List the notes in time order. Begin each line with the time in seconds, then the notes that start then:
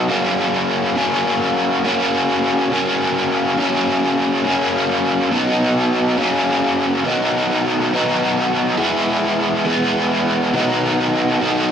0.08 F#2 C#3 F#3 A#3 C#4
0.96 F#2 C#3 F#3 A#3 C#4
1.84 F#2 C#3 F#3 A#3 C#4
2.72 F#2 C#3 F#3 A#3 C#4
3.57 F#2 C#3 F#3 A#3 C#4
4.44 F#2 C#3 F#3 A#3 C#4
5.31 B2 F#3 B3 D#4
6.17 F#2 C#3 F#3 A#3 C#4
7.04 B2 D#3 F#3 B3 D#4
7.93 B2 D#3 F#3 B3 D#4
8.77 E3 G#3 B3 E4
9.65 E3 G#3 B3 E4
10.53 B2 D#3 F#3 B3 D#4
11.40 B2 D#3 F#3 B3 D#4